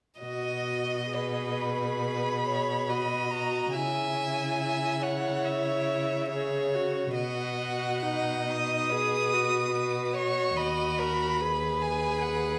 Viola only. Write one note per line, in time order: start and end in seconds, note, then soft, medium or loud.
0.22 1.11 F#4 soft
1.15 2.91 G#4 soft
2.89 3.32 F#4 soft
3.32 3.77 F#4 soft
3.75 4.17 E4 soft
4.17 6.27 E4 soft
6.31 6.76 G#4 soft
6.75 7.15 F#4 soft
7.15 8.04 F#4 soft
8.03 8.48 D#4 soft
8.49 8.94 D#4 soft
8.92 9.35 G#4 soft
9.34 9.75 F#4 soft
9.76 11.43 F#4 soft
11.41 12.59 G#4 soft